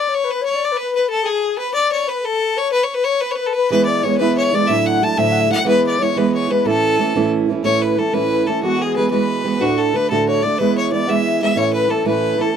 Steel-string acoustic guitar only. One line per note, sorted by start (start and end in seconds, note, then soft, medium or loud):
3.70 4.03 E3 medium
3.70 4.04 G#3 medium
3.70 4.04 B3 medium
3.70 4.06 E4 medium
4.03 4.18 E3 medium
4.03 4.18 G#3 medium
4.03 4.20 B3 medium
4.03 4.20 E4 medium
4.19 4.52 E3 medium
4.19 4.52 G#3 medium
4.19 4.53 B3 medium
4.19 4.55 E4 medium
4.52 4.68 E3 medium
4.52 4.69 G#3 medium
4.52 4.69 B3 medium
4.52 4.69 E4 medium
4.69 5.02 D2 medium
4.69 5.02 A2 medium
4.69 5.00 F#3 medium
4.69 5.01 A3 medium
4.69 5.02 D4 medium
4.69 5.03 E4 medium
5.01 5.17 F#3 medium
5.01 5.17 A3 medium
5.01 5.18 D4 medium
5.01 5.18 E4 medium
5.17 5.51 D2 medium
5.17 5.51 A2 medium
5.17 5.47 F#3 medium
5.17 5.49 A3 medium
5.17 5.49 D4 medium
5.17 5.51 E4 medium
5.49 5.64 F#3 medium
5.49 5.65 A3 medium
5.49 5.66 D4 medium
5.49 5.66 E4 medium
5.64 5.98 E3 medium
5.64 5.98 G#3 medium
5.64 5.99 B3 medium
5.64 6.01 E4 medium
5.98 6.15 E3 medium
5.98 6.16 G#3 medium
5.98 6.16 B3 medium
5.98 6.17 E4 medium
6.16 6.49 E3 medium
6.16 6.49 G#3 medium
6.16 6.50 B3 medium
6.16 6.51 E4 medium
6.49 6.65 E3 medium
6.49 6.65 G#3 medium
6.49 6.66 B3 medium
6.49 6.65 E4 medium
6.64 6.98 A2 medium
6.64 6.98 E3 medium
6.64 6.98 A3 medium
6.64 6.99 C#4 medium
6.64 7.01 E4 medium
6.99 7.14 E3 medium
6.99 7.15 A3 medium
6.99 7.15 C#4 medium
6.99 7.16 E4 medium
7.14 7.48 A2 medium
7.14 7.48 E3 medium
7.14 7.49 A3 medium
7.14 7.49 C#4 medium
7.14 7.51 E4 loud
7.49 7.63 E3 medium
7.49 7.63 A3 medium
7.49 7.63 C#4 medium
7.49 7.64 E4 medium
7.63 7.97 A2 medium
7.63 7.95 E3 medium
7.63 7.97 A3 medium
7.63 7.97 C#4 medium
7.63 7.98 E4 medium
7.96 8.11 E3 soft
7.96 8.12 A3 medium
7.96 8.13 C#4 medium
7.96 8.14 E4 medium
8.13 8.46 A2 medium
8.13 8.45 E3 medium
8.13 8.47 A3 medium
8.13 8.47 C#4 medium
8.13 8.47 E4 medium
8.47 8.61 E3 medium
8.47 8.63 A3 medium
8.47 8.63 C#4 medium
8.47 8.64 E4 medium
8.63 8.96 E3 medium
8.63 8.96 G#3 medium
8.63 8.96 B3 medium
8.63 8.97 F#4 medium
8.97 9.09 E3 medium
8.97 9.11 G#3 medium
8.97 9.11 B3 medium
8.97 9.11 F#4 medium
9.11 9.43 E3 medium
9.11 9.44 G#3 medium
9.11 9.44 B3 medium
9.11 9.45 F#4 medium
9.44 9.60 E3 medium
9.44 9.61 G#3 medium
9.44 9.61 B3 medium
9.44 9.61 F#4 medium
9.60 9.93 D2 medium
9.60 9.94 A2 medium
9.60 9.92 D3 medium
9.60 9.94 A3 medium
9.60 9.94 D4 medium
9.60 9.95 F#4 medium
9.93 10.10 D3 medium
9.93 10.10 A3 medium
9.93 10.10 D4 medium
9.93 10.11 F#4 medium
10.10 10.44 D2 medium
10.10 10.44 A2 medium
10.10 10.42 D3 medium
10.10 10.43 A3 medium
10.10 10.44 D4 medium
10.10 10.44 F#4 medium
10.43 10.59 D3 soft
10.43 10.60 A3 medium
10.43 10.60 D4 medium
10.43 10.61 F#4 medium
10.60 10.91 E3 medium
10.60 10.91 G#3 medium
10.60 10.92 B3 medium
10.60 10.94 E4 medium
10.92 11.06 E3 medium
10.92 11.08 G#3 medium
10.92 11.07 B3 medium
10.92 11.08 E4 medium
11.07 11.40 E3 medium
11.07 11.41 G#3 medium
11.07 11.41 B3 medium
11.07 11.42 E4 medium
11.41 11.54 E3 soft
11.41 11.56 G#3 medium
11.41 11.56 B3 medium
11.41 11.56 E4 medium
11.55 11.90 A2 medium
11.55 11.87 E3 medium
11.55 11.88 A3 medium
11.55 11.89 C#4 medium
11.55 11.89 E4 medium
11.88 12.04 E3 medium
11.88 12.05 A3 medium
11.88 12.05 C#4 medium
11.88 12.05 E4 medium
12.04 12.39 A2 medium
12.04 12.36 E3 medium
12.04 12.37 A3 medium
12.04 12.38 C#4 medium
12.04 12.39 E4 medium
12.37 12.55 E3 medium
12.37 12.55 A3 medium
12.37 12.56 C#4 medium
12.37 12.56 E4 medium